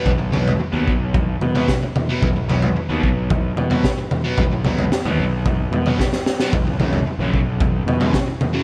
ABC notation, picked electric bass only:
X:1
M:4/4
L:1/16
Q:1/4=111
K:B
V:1 name="Picked electric bass" clef=bass
B,,,2 B,,,2 z D,, B,,,4 B,,2 z4 | B,,,2 B,,,2 z D,, B,,,4 B,,2 z4 | B,,,2 B,,,2 z D,, B,,,4 B,,2 z4 | B,,,2 B,,,2 z A,,, B,,,4 B,,2 z4 |]